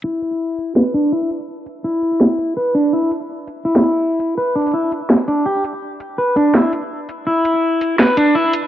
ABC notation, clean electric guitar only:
X:1
M:4/4
L:1/8
Q:"Swing 16ths" 1/4=166
K:Em
V:1 name="Clean electric guitar"
E4 B D E z | z2 E4 B D | E z3 E4 | B D E z2 D G z |
z2 B D E z3 | E4 B D E z |]